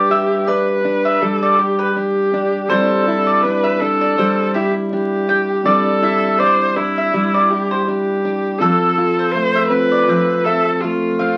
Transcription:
0.00 1.22 G3 medium
0.00 2.28 D4 medium
0.00 0.49 G4 loud
0.00 2.29 G4 medium
0.00 2.30 B4 medium
0.10 1.59 G4 medium
0.10 0.47 E5 medium
0.47 0.84 D4 medium
0.47 1.22 B4 loud
0.47 0.67 D5 medium
0.85 1.96 D4 medium
1.05 1.21 E5 medium
1.21 2.71 G3 medium
1.21 1.59 A4 loud
1.43 1.59 D5 medium
1.58 1.93 G4 medium
1.58 3.08 G4 medium
1.79 1.95 B4 medium
1.93 2.33 D4 medium
1.93 2.70 G4 medium
2.32 2.69 D4 medium
2.32 3.11 D4 medium
2.32 2.70 G4 soft
2.32 2.71 D5 medium
2.68 5.61 G3 medium
2.68 4.18 G3 medium
2.68 5.61 C4 medium
2.68 5.62 D4 medium
2.68 5.62 E4 medium
2.68 5.62 G4 medium
2.68 3.43 A4 loud
2.68 3.05 C5 loud
2.73 5.63 D5 medium
3.08 4.55 E4 medium
3.27 3.43 D5 medium
3.42 3.81 D4 medium
3.42 3.82 B4 loud
3.64 3.80 E5 medium
3.80 4.92 D4 medium
3.80 4.54 A4 loud
4.01 4.17 D5 medium
4.18 5.64 G3 medium
4.18 4.53 C5 medium
4.54 6.01 E4 medium
4.54 4.71 G4 loud
4.54 4.74 E5 medium
4.91 5.29 D4 medium
4.91 5.67 G4 medium
5.29 6.39 D4 medium
5.29 5.48 G5 medium
5.63 8.56 G3 medium
5.63 7.13 G3 medium
5.63 8.56 C4 medium
5.63 8.57 D4 medium
5.63 8.57 E4 medium
5.63 8.58 G4 medium
5.63 6.40 A4 loud
5.63 6.01 D5 medium
5.67 8.58 D5 medium
6.03 7.50 E4 medium
6.03 6.38 E5 medium
6.39 6.75 D4 medium
6.39 6.78 C5 loud
6.39 6.59 D5 medium
6.76 7.87 D4 medium
6.76 7.51 E4 loud
6.98 7.13 E5 medium
7.14 8.70 G3 medium
7.34 7.50 D5 medium
7.50 8.70 E4 medium
7.50 7.86 G4 medium
7.71 7.87 C5 medium
7.86 8.24 D4 medium
7.86 8.60 G4 medium
8.25 8.70 D4 medium
8.59 10.06 F3 medium
8.59 10.41 C4 medium
8.59 10.42 F4 medium
8.59 9.33 A4 loud
8.59 8.96 A4 loud
8.63 10.43 A4 medium
8.98 10.44 F4 medium
9.19 9.34 C5 medium
9.31 10.82 A3 medium
9.31 9.68 C5 loud
9.55 9.71 E5 medium
9.68 11.18 C4 medium
9.68 10.46 B4 loud
9.92 10.08 D5 medium
10.08 11.37 F3 medium
10.08 10.44 C4 medium
10.44 11.37 C4 medium
10.44 11.37 F4 medium
10.44 11.37 F4 soft
10.44 10.83 A4 loud
10.44 11.37 A4 medium
10.44 10.65 E5 medium
10.81 11.37 A3 medium
10.81 11.37 F4 medium
11.19 11.37 C4 medium
11.19 11.37 F5 medium

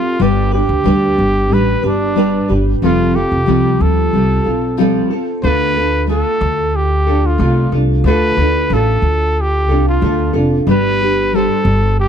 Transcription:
0.00 0.18 G3 soft
0.00 0.20 C4 soft
0.00 0.20 F4 soft
0.00 0.24 F4 medium
0.00 0.20 A4 soft
0.19 0.60 G1 medium
0.19 0.52 G3 medium
0.19 0.53 D4 medium
0.19 0.52 G4 medium
0.19 0.53 G4 medium
0.19 0.50 B4 medium
0.52 0.84 D4 soft
0.52 0.84 G4 soft
0.52 1.55 G4 medium
0.52 0.85 B4 medium
0.69 0.82 D2 medium
0.84 1.12 D2 medium
0.84 1.49 G3 medium
0.84 1.50 D4 medium
0.84 1.52 G4 medium
0.84 1.51 B4 medium
1.18 1.51 G1 medium
1.50 1.78 A1 medium
1.50 1.83 G3 medium
1.50 1.84 D4 medium
1.50 1.83 G4 medium
1.50 1.81 B4 medium
1.50 1.85 B4 medium
1.82 2.37 G1 medium
1.82 2.15 D4 soft
1.82 2.52 D4 medium
1.82 2.15 G4 soft
1.82 2.16 B4 medium
2.15 2.49 G3 medium
2.15 2.49 D4 medium
2.15 2.48 G4 medium
2.15 2.47 B4 medium
2.48 2.76 G1 medium
2.48 2.83 D4 soft
2.48 2.82 G4 soft
2.48 2.81 B4 soft
2.82 3.22 F1 medium
2.82 3.15 F3 medium
2.82 3.15 G3 medium
2.82 3.15 C4 medium
2.82 3.13 F4 medium
2.82 3.17 F4 medium
2.82 3.12 A4 medium
3.13 3.46 C4 soft
3.13 3.47 F4 soft
3.13 3.83 G4 medium
3.13 3.47 A4 soft
3.32 3.45 F1 medium
3.46 3.75 C2 medium
3.46 4.16 F3 medium
3.46 4.12 G3 medium
3.46 4.13 C4 medium
3.46 4.14 F4 medium
3.46 4.16 A4 medium
3.80 4.07 D2 medium
3.80 4.79 A4 medium
4.13 4.40 C2 medium
4.13 4.45 G3 medium
4.13 4.46 C4 medium
4.13 4.44 F4 medium
4.13 4.43 A4 medium
4.44 4.99 B1 medium
4.44 4.77 C4 soft
4.44 4.77 F4 soft
4.44 4.78 A4 soft
4.77 5.10 F3 medium
4.77 5.11 G3 medium
4.77 5.11 C4 medium
4.77 5.10 F4 medium
4.77 5.09 A4 medium
5.10 5.43 C4 soft
5.10 5.43 F4 soft
5.10 5.43 A4 medium
5.42 6.21 D2 medium
5.42 5.76 D3 medium
5.42 5.76 A3 medium
5.42 5.76 D4 medium
5.42 5.75 F4 medium
5.42 5.73 A4 medium
5.42 6.05 B4 loud
5.74 6.06 D4 soft
5.74 6.07 F4 soft
5.74 6.08 A4 soft
6.07 7.06 A3 medium
6.07 7.09 D4 medium
6.07 7.07 F4 medium
6.07 7.06 A4 medium
6.07 6.77 A4 medium
6.41 7.36 D2 medium
6.76 7.28 G4 medium
7.07 7.38 D4 soft
7.07 7.39 F4 soft
7.07 7.40 A4 soft
7.26 7.74 F4 medium
7.38 7.66 C2 medium
7.38 7.72 A3 medium
7.38 7.72 D4 medium
7.38 7.72 F4 medium
7.38 7.71 A4 medium
7.72 7.99 C2 medium
7.72 8.05 D4 soft
7.72 8.06 F4 soft
7.72 8.05 A4 soft
8.04 8.31 D2 loud
8.04 8.38 D3 medium
8.04 8.38 A3 medium
8.04 8.38 D4 medium
8.04 8.38 F4 medium
8.04 8.36 A4 medium
8.04 8.75 B4 loud
8.37 8.64 D2 medium
8.37 8.70 D4 soft
8.37 8.71 F4 soft
8.37 8.71 A4 medium
8.70 8.97 A1 medium
8.70 9.69 A3 medium
8.70 9.71 D4 medium
8.70 9.69 F4 medium
8.70 9.67 A4 medium
8.70 9.43 A4 medium
9.02 9.69 D2 medium
9.41 9.88 G4 medium
9.69 9.96 C2 medium
9.69 10.01 D4 soft
9.69 10.02 F4 soft
9.69 10.02 A4 medium
9.89 10.33 F4 medium
10.01 10.29 D2 medium
10.01 10.34 A3 medium
10.01 10.35 D4 medium
10.01 10.34 F4 medium
10.01 10.32 A4 medium
10.33 10.61 F1 medium
10.33 10.67 D4 soft
10.33 10.67 F4 soft
10.33 10.67 A4 soft
10.67 11.45 G1 medium
10.67 11.00 G3 medium
10.67 11.00 D4 medium
10.67 11.00 G4 medium
10.67 11.37 B4 loud
11.02 11.33 D4 soft
11.02 11.33 G4 soft
11.33 12.08 G3 medium
11.33 12.08 D4 medium
11.33 12.08 G4 medium
11.33 11.99 A4 medium
11.33 12.08 C5 medium
11.65 12.08 G1 loud
12.00 12.08 G4 medium

